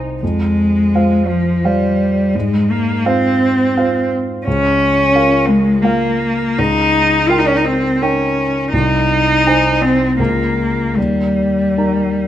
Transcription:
0.00 0.24 C2 soft
0.00 0.25 D#4 soft
0.00 0.24 C5 soft
0.00 0.24 G#5 soft
0.23 0.91 F2 soft
0.23 1.30 G#3 medium
0.94 1.61 F4 soft
0.94 1.61 C5 soft
0.94 1.61 F5 soft
1.29 1.66 F3 soft
1.64 2.36 G3 soft
1.64 2.30 F4 soft
1.64 2.31 C5 soft
1.64 2.31 F5 soft
2.35 3.03 G#2 soft
2.35 2.72 G#3 medium
2.71 3.07 A#3 soft
3.05 4.12 C4 medium
3.05 3.72 F4 soft
3.05 3.73 C5 soft
3.05 3.73 F5 soft
3.77 4.43 F4 soft
3.77 4.43 C5 soft
3.77 4.43 F5 soft
4.46 5.13 C#2 soft
4.46 5.49 C#4 medium
5.15 5.79 F4 soft
5.15 5.80 A#4 soft
5.15 5.80 F5 soft
5.48 5.84 G#3 medium
5.83 6.60 A#3 soft
5.83 6.55 F4 soft
5.83 6.55 A#4 soft
5.83 6.55 F5 soft
6.59 7.27 C#2 soft
6.59 7.31 D#4 medium
7.29 7.97 D#4 soft
7.29 7.40 F4 soft
7.29 7.97 A#4 soft
7.29 7.97 G5 soft
7.39 7.49 D#4 soft
7.47 7.58 C#4 soft
7.56 7.66 D#4 soft
7.65 8.03 C4 medium
8.02 8.72 C#4 soft
8.02 8.69 D#4 soft
8.02 8.69 A#4 soft
8.02 8.69 G5 soft
8.73 9.43 C2 soft
8.73 9.83 D#4 medium
9.46 10.15 D#4 soft
9.46 10.16 C5 soft
9.46 10.16 G#5 soft
9.81 10.18 C4 soft
10.19 10.95 C#2 soft
10.19 10.99 A#3 soft
10.19 10.93 F4 soft
10.19 10.93 A#4 soft
10.19 10.94 A#5 soft
10.97 11.75 D#2 soft
10.97 12.28 G3 soft
11.77 12.28 D#4 soft
11.77 12.28 A#4 soft
11.77 12.28 A#5 soft

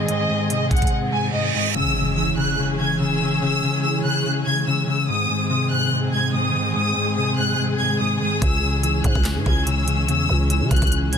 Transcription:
0.00 1.72 D#3 medium
0.00 1.72 G#3 medium
0.00 1.72 C4 medium
0.00 1.72 G#4 medium
0.08 0.28 G#2 medium
0.08 0.47 D#5 loud
0.08 closed hi-hat medium
0.30 0.70 G#2 medium
0.50 1.55 C3 medium
0.50 0.69 D#5 medium
0.50 closed hi-hat medium
0.71 0.90 G#2 medium
0.71 0.90 F#5 medium
0.71 kick medium
0.71 closed hi-hat soft
0.77 closed hi-hat soft
0.82 kick medium
0.82 closed hi-hat medium
0.87 closed hi-hat medium
0.92 1.11 G#2 medium
0.92 reverse cymbal medium
1.13 1.32 G#2 medium
1.13 1.32 G#5 medium
1.33 1.53 G#2 medium
1.33 1.53 D#5 medium
1.54 1.75 G#2 medium
1.54 1.73 D#5 medium
1.75 1.95 C#3 medium
1.75 5.05 E3 medium
1.75 11.18 G#3 medium
1.75 5.05 C#4 medium
1.75 5.05 G#4 loud
1.75 2.14 E6 loud
1.75 impact medium
1.96 2.36 C#3 medium
2.17 3.21 E3 medium
2.17 2.36 E6 medium
2.37 2.58 C#3 medium
2.37 2.57 F#6 medium
2.59 2.78 C#3 medium
2.79 2.98 C#3 medium
2.79 2.98 G#6 medium
3.00 3.19 C#3 medium
3.00 3.40 E6 medium
3.21 3.41 C#3 medium
3.42 3.62 C#3 medium
3.42 3.81 E6 loud
3.63 4.03 C#3 medium
3.84 4.88 E3 medium
3.84 4.03 E6 medium
4.04 4.24 C#3 medium
4.04 4.24 F#6 medium
4.26 4.45 C#3 medium
4.46 4.66 C#3 medium
4.46 4.65 G#6 loud
4.67 4.86 C#3 medium
4.67 4.86 E6 medium
4.87 5.08 C#3 medium
4.87 5.07 E6 medium
5.08 5.28 G#2 medium
5.08 8.39 D#3 medium
5.08 8.39 C4 medium
5.08 11.18 G#4 loud
5.08 5.48 D#6 loud
5.30 5.70 G#2 medium
5.50 6.54 C3 medium
5.50 5.69 D#6 medium
5.71 5.91 G#2 medium
5.71 5.90 F#6 medium
5.92 6.12 G#2 medium
6.13 6.33 G#2 medium
6.13 6.32 G#6 medium
6.34 6.53 G#2 medium
6.34 6.73 D#6 medium
6.55 6.74 G#2 medium
6.75 6.95 G#2 medium
6.75 7.14 D#6 loud
6.96 7.36 G#2 medium
7.17 8.21 C3 medium
7.17 7.36 D#6 medium
7.37 7.57 G#2 medium
7.37 7.57 F#6 medium
7.58 7.78 G#2 medium
7.79 7.99 G#2 medium
7.79 7.98 G#6 medium
8.00 8.20 G#2 loud
8.00 8.19 D#6 medium
8.20 8.42 G#2 medium
8.20 8.40 D#6 medium
8.41 9.02 C#2 loud
8.41 8.62 C#3 medium
8.41 11.18 E3 medium
8.41 11.18 C#4 medium
8.41 8.81 E6 loud
8.41 kick loud
8.41 closed hi-hat medium
8.63 9.03 C#3 medium
8.83 9.88 E3 medium
8.83 9.03 E6 medium
8.83 closed hi-hat medium
9.04 9.15 G#2 loud
9.04 9.24 C#3 medium
9.04 9.23 F#6 medium
9.04 kick medium
9.04 closed hi-hat medium
9.15 9.38 C#2 loud
9.15 kick medium
9.25 9.45 C#3 medium
9.25 snare loud
9.25 clap medium
9.25 closed hi-hat medium
9.36 9.46 G#2 loud
9.46 10.10 C#2 loud
9.46 9.65 C#3 medium
9.46 9.65 G#6 medium
9.46 kick medium
9.66 9.86 C#3 medium
9.66 10.06 E6 medium
9.66 closed hi-hat medium
9.87 10.07 C#3 medium
9.87 closed hi-hat medium
10.08 10.28 E2 loud
10.08 10.28 C#3 loud
10.08 10.48 E6 loud
10.08 closed hi-hat medium
10.29 10.63 C#2 loud
10.29 10.69 C#3 medium
10.50 11.18 E3 medium
10.50 10.69 E6 medium
10.50 closed hi-hat medium
10.61 10.70 C#3 loud
10.71 10.81 C#2 loud
10.71 10.91 C#3 medium
10.71 10.90 F#6 medium
10.71 kick medium
10.71 closed hi-hat medium
10.76 closed hi-hat medium
10.82 11.18 C#2 loud
10.82 kick loud
10.82 closed hi-hat medium
10.87 closed hi-hat soft
10.92 11.12 C#3 medium
10.92 closed hi-hat medium
11.13 11.18 C#3 medium
11.13 11.18 G#6 loud
11.13 closed hi-hat medium

